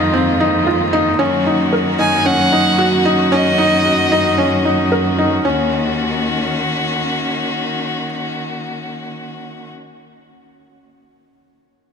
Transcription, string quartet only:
0.00 5.41 D#3 medium
0.00 1.16 G#3 medium
0.00 5.41 A#3 medium
0.00 1.16 F4 medium
1.20 5.41 C#4 medium
1.20 5.41 F#4 medium
5.45 9.72 D#3 medium
5.45 9.71 A#3 medium
5.45 9.71 C#4 medium
5.45 9.71 F#4 medium

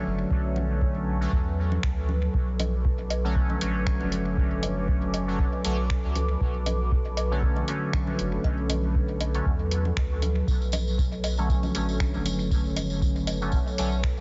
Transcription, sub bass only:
0.05 0.24 F#1 medium
0.31 1.27 B1 medium
1.32 1.78 E2 medium
1.83 2.29 D2 loud
2.34 3.56 B1 loud
3.61 3.94 A1 medium
4.01 5.47 F#1 medium
5.65 5.98 B1 loud
6.04 6.36 C#2 loud
6.41 7.63 B1 loud
8.19 8.38 F#1 medium
8.44 9.41 B1 loud
9.46 9.91 E2 medium
9.97 10.42 D2 medium
10.48 11.69 B1 medium
11.75 12.08 A1 medium
12.14 13.60 F#1 medium
13.78 14.11 B1 loud

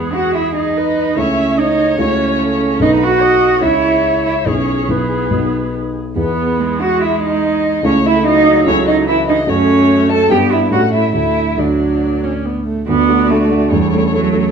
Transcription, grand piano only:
0.00 1.13 E2 soft
0.00 1.13 G#3 soft
0.00 1.13 E4 soft
0.00 1.14 B4 soft
1.16 1.96 C#2 soft
1.16 1.97 A3 soft
1.16 1.97 E4 soft
1.16 1.98 A4 soft
1.98 2.78 C#2 soft
1.98 2.79 A3 soft
1.98 2.79 E4 soft
1.98 2.79 F#4 soft
2.79 3.60 B1 soft
2.79 3.60 B3 soft
2.79 3.60 D#4 soft
2.79 3.61 A4 soft
3.61 4.44 C#2 soft
3.61 4.44 G#3 soft
3.61 4.44 E4 soft
3.61 4.45 G#4 soft
4.45 4.87 B1 soft
4.45 4.87 B3 soft
4.45 4.88 E4 soft
4.45 4.88 G#4 soft
4.88 5.29 B1 soft
4.88 5.29 B3 soft
4.88 5.31 E4 soft
4.88 5.31 G#4 soft
5.30 6.14 B1 soft
5.30 6.14 B3 soft
5.30 6.15 D#4 soft
5.30 6.15 F#4 soft
6.16 7.80 E2 soft
6.16 7.80 B3 soft
6.16 7.80 E4 soft
6.16 7.80 G#4 soft
7.83 8.64 C#2 medium
7.83 8.64 A3 soft
7.83 8.64 E4 soft
7.83 8.64 A4 soft
8.65 9.46 C#2 medium
8.65 9.46 F#3 medium
8.65 9.46 E4 soft
8.65 9.46 A4 soft
9.47 10.27 F#2 medium
9.47 10.28 F#3 soft
9.47 10.28 F#4 soft
9.47 10.28 A4 soft
10.29 10.70 G2 medium
10.29 10.71 B3 soft
10.29 10.71 D4 soft
10.29 10.70 G4 soft
10.70 11.13 A2 soft
10.70 11.13 A3 soft
10.70 11.14 C#4 soft
10.70 11.14 G4 soft
11.13 11.56 D2 soft
11.13 11.56 A3 soft
11.13 11.57 D4 soft
11.13 11.57 F#4 soft
11.57 12.84 D2 soft
11.57 12.84 A3 soft
11.57 12.84 D4 soft
11.57 12.85 F#4 soft
12.89 13.09 D2 medium
13.09 13.28 A3 soft
13.09 13.28 D4 soft
13.09 13.28 F#4 soft
13.30 13.49 A3 soft
13.30 13.49 D4 soft
13.30 13.49 F#4 soft
13.50 13.69 A3 soft
13.50 13.70 D4 soft
13.50 13.70 F#4 soft
13.71 13.92 E2 medium
13.93 14.11 A3 soft
13.93 14.12 C#4 soft
13.93 14.12 A4 soft
14.13 14.32 A3 soft
14.13 14.32 C#4 soft
14.13 14.32 A4 soft
14.34 14.51 A3 soft
14.34 14.51 C#4 soft
14.34 14.51 A4 soft

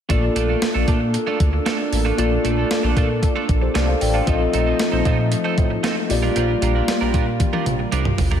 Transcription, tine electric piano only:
0.09 2.14 A#3 medium
0.09 2.14 F4 medium
0.09 2.15 A4 medium
0.09 2.15 D5 medium
2.17 4.23 A#3 medium
2.17 4.23 F4 medium
2.17 3.47 A4 medium
2.17 3.47 D5 medium
3.62 3.75 G4 medium
3.62 3.75 C5 medium
3.76 3.88 A4 medium
3.76 3.88 D5 medium
3.88 4.01 C5 medium
3.88 4.01 F5 medium
4.01 4.14 D5 medium
4.01 4.14 G5 medium
4.14 4.39 C5 soft
4.14 4.39 F5 medium
4.26 6.06 C4 medium
4.26 6.06 F4 medium
4.26 6.06 A4 medium
4.26 6.07 D#5 medium
6.09 6.16 A3 medium
6.09 8.14 F4 medium
6.09 8.15 G4 medium
6.09 8.15 D5 medium
6.15 8.17 A#3 medium

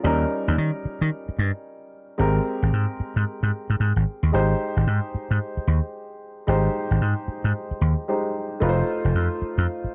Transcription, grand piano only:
0.03 2.14 G3 medium
0.03 2.15 C#4 medium
0.03 2.15 D#4 medium
0.03 2.15 A#4 medium
2.18 4.29 G#3 medium
2.18 4.29 C4 medium
2.18 4.29 G4 medium
2.18 4.30 A#4 medium
4.32 6.43 G#3 medium
4.32 6.43 D#4 medium
4.32 6.44 G4 medium
4.32 6.44 C5 medium
6.47 8.05 G#3 medium
6.47 8.05 D#4 medium
6.47 8.05 G4 medium
6.47 8.06 C5 medium
8.08 8.62 G#3 medium
8.08 8.60 D#4 medium
8.08 8.62 G4 medium
8.08 8.62 C5 medium
8.60 9.95 A3 medium
8.60 9.95 D#4 medium
8.60 9.95 F4 medium
8.60 8.70 B4 medium
8.69 9.95 C5 medium

